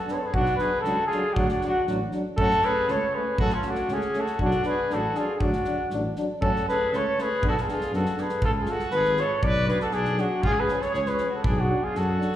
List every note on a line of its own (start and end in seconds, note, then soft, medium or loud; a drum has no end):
0.00 0.14 F#4 medium
0.00 0.12 A4 medium
0.07 0.21 B3 medium
0.07 0.18 D4 medium
0.07 0.16 B4 medium
0.07 snare soft
0.12 0.20 G#4 medium
0.12 0.24 C#5 soft
0.18 0.27 A4 soft
0.23 0.36 G#4 medium
0.23 0.32 B4 medium
0.33 0.49 B1 medium
0.33 0.45 D4 medium
0.33 0.59 D4 medium
0.33 0.56 F#4 medium
0.33 kick medium
0.37 0.47 F#3 medium
0.46 snare soft
0.56 0.70 D4 soft
0.56 0.83 G#4 medium
0.56 0.80 B4 medium
0.56 snare soft
0.61 0.71 F#3 soft
0.80 0.98 C#2 medium
0.80 1.06 F#4 medium
0.80 1.06 A4 medium
0.85 0.97 F#3 medium
0.85 0.95 D4 medium
0.85 snare soft
1.07 1.35 F4 medium
1.07 1.35 G#4 medium
1.11 1.22 F#3 medium
1.11 1.23 D4 medium
1.11 snare soft
1.33 1.51 D2 medium
1.33 1.46 F#3 medium
1.33 1.50 D4 medium
1.33 1.46 D4 medium
1.33 1.48 F#4 medium
1.33 kick medium
1.49 1.64 D4 medium
1.49 1.67 F#4 medium
1.49 snare soft
1.61 1.72 F#3 medium
1.61 1.73 D4 soft
1.61 1.83 D4 medium
1.61 snare soft
1.67 1.84 F#4 loud
1.87 2.01 A1 medium
1.87 1.98 F#3 medium
1.87 1.98 D4 medium
1.87 snare soft
2.12 2.24 F#3 medium
2.12 2.23 D4 medium
2.12 snare soft
2.37 2.52 F#2 medium
2.37 2.48 A3 medium
2.37 2.49 C#4 medium
2.37 2.65 F#4 loud
2.37 2.67 A4 loud
2.37 kick medium
2.51 snare soft
2.62 2.74 A3 medium
2.62 2.73 C#4 medium
2.62 2.90 G#4 medium
2.62 2.93 B4 loud
2.62 snare soft
2.88 3.03 C#2 medium
2.88 3.00 A3 medium
2.88 2.98 C#4 medium
2.88 3.13 A4 medium
2.88 3.16 C#5 loud
2.88 snare soft
3.11 3.38 G#4 medium
3.11 3.40 B4 medium
3.15 3.26 A3 medium
3.15 3.25 C#4 medium
3.38 3.53 F#2 medium
3.38 3.49 A3 medium
3.38 3.50 C#4 medium
3.38 3.55 F#4 medium
3.38 3.56 A4 loud
3.38 kick loud
3.50 3.71 C#4 medium
3.50 snare soft
3.54 3.68 F4 medium
3.62 3.76 A3 medium
3.62 3.74 C#4 medium
3.62 snare soft
3.67 3.94 D4 medium
3.67 3.95 F#4 medium
3.75 snare soft
3.88 4.03 C#2 medium
3.88 4.01 A3 soft
3.88 4.00 C#4 soft
3.88 snare soft
3.93 4.22 C#4 medium
3.93 4.21 G#4 medium
4.01 snare soft
4.13 4.26 A3 medium
4.13 4.24 C#4 soft
4.13 snare soft
4.20 4.43 F#4 medium
4.20 4.41 A4 medium
4.26 snare soft
4.39 4.55 B1 medium
4.39 4.52 F#3 medium
4.39 4.50 D4 medium
4.39 4.64 F#4 medium
4.39 kick medium
4.44 4.66 D4 medium
4.51 snare soft
4.63 4.76 F#3 soft
4.63 4.75 D4 medium
4.63 4.94 B4 medium
4.63 snare soft
4.68 4.96 G#4 medium
4.90 5.05 A1 medium
4.90 5.02 F#3 medium
4.90 5.00 D4 soft
4.90 5.18 A4 medium
4.90 snare soft
4.94 5.20 F#4 medium
5.15 5.28 F#3 soft
5.15 5.26 D4 medium
5.15 5.35 F4 medium
5.15 5.34 G#4 medium
5.15 snare soft
5.34 5.42 F4 soft
5.34 5.42 G#4 medium
5.40 5.56 D2 medium
5.40 5.52 F#3 medium
5.40 5.91 D4 medium
5.40 5.51 D4 medium
5.40 5.91 F#4 medium
5.40 kick medium
5.53 snare soft
5.64 5.75 F#3 medium
5.64 5.77 D4 medium
5.64 snare soft
5.90 6.06 A1 medium
5.90 6.02 F#3 medium
5.90 6.04 D4 medium
5.90 snare soft
6.16 6.28 F#3 medium
6.16 6.27 D4 medium
6.16 snare soft
6.41 6.56 F#2 medium
6.41 6.52 A3 medium
6.41 6.52 C#4 medium
6.41 6.66 F#4 medium
6.41 6.65 A4 loud
6.41 kick medium
6.56 snare soft
6.68 6.80 A3 medium
6.68 6.78 C#4 soft
6.68 6.93 G#4 medium
6.68 6.98 B4 loud
6.68 snare soft
6.91 7.06 C#2 medium
6.91 7.05 A3 medium
6.91 7.01 C#4 medium
6.91 7.24 A4 medium
6.91 snare soft
6.97 7.22 C#5 medium
7.17 7.28 A3 medium
7.17 7.28 C#4 soft
7.17 7.44 B4 medium
7.17 snare soft
7.22 7.45 G#4 medium
7.42 7.56 B1 medium
7.42 7.54 B3 medium
7.42 7.53 D4 medium
7.42 kick medium
7.47 7.57 F#4 medium
7.47 7.58 A4 loud
7.57 7.69 F4 medium
7.57 snare soft
7.63 7.71 G#4 medium
7.67 7.77 B3 medium
7.67 7.77 D4 soft
7.67 7.93 F4 medium
7.67 snare soft
7.72 7.94 G#4 medium
7.81 snare soft
7.92 8.06 F#2 medium
7.92 8.03 B3 medium
7.92 8.02 D4 medium
7.92 8.21 F#4 medium
7.92 8.24 A4 medium
7.92 snare soft
8.05 snare soft
8.16 8.29 B3 soft
8.16 8.27 D4 medium
8.16 8.42 G#4 medium
8.16 snare soft
8.23 8.45 B4 medium
8.29 snare soft
8.42 8.71 C#2 medium
8.42 8.48 F4 medium
8.42 8.51 A4 loud
8.42 kick medium
8.56 8.73 F4 medium
8.61 8.71 G#4 medium
8.66 8.78 G#3 soft
8.66 8.78 F4 medium
8.66 8.91 A4 medium
8.66 snare soft
8.71 8.95 F#4 medium
8.79 snare soft
8.91 9.21 G#1 medium
8.91 9.21 B4 loud
8.91 snare soft
8.96 9.23 G#4 medium
9.04 snare soft
9.17 9.28 G#3 medium
9.17 9.28 F4 medium
9.17 9.45 C#5 medium
9.17 snare soft
9.22 9.47 A4 medium
9.42 9.70 B1 medium
9.42 9.69 B4 medium
9.42 9.68 D5 loud
9.42 kick loud
9.66 9.77 D4 medium
9.66 9.82 G#4 medium
9.66 9.81 B4 loud
9.66 snare soft
9.70 9.80 F#3 medium
9.80 9.95 F#4 medium
9.80 9.95 A4 medium
9.80 snare soft
9.91 10.21 B1 medium
9.91 10.19 D4 medium
9.91 10.21 G#4 medium
9.91 snare soft
10.05 snare soft
10.18 10.28 F#3 medium
10.18 10.28 D4 medium
10.18 10.44 D4 medium
10.18 10.47 F#4 medium
10.18 snare soft
10.42 10.71 C#2 medium
10.42 10.55 F4 medium
10.42 10.61 G#4 loud
10.42 kick medium
10.53 10.82 G#4 medium
10.60 10.84 B4 medium
10.68 10.79 F3 medium
10.68 10.80 C#4 medium
10.68 snare soft
10.80 10.90 A4 soft
10.80 10.94 C#5 loud
10.80 snare soft
10.91 11.22 C#2 medium
10.91 11.02 G#4 medium
10.91 snare soft
10.95 11.09 C#5 loud
11.02 11.29 G#4 medium
11.02 snare soft
11.08 11.32 B4 medium
11.18 11.29 F3 medium
11.18 11.29 C#4 medium
11.18 snare soft
11.29 11.44 F#4 medium
11.35 11.49 A4 medium
11.43 11.72 B1 medium
11.43 11.55 D4 medium
11.43 kick loud
11.47 11.62 G#4 medium
11.55 11.85 D4 medium
11.60 11.85 F#4 medium
11.68 11.78 F#3 medium
11.68 11.79 D4 soft
11.83 11.98 F4 medium
11.83 11.99 G#4 medium
11.95 12.23 F#2 medium
11.95 12.36 F#4 medium
11.95 12.36 A4 medium
11.95 snare soft
12.19 12.30 F#3 soft
12.19 12.29 D4 soft
12.19 snare soft
12.33 snare soft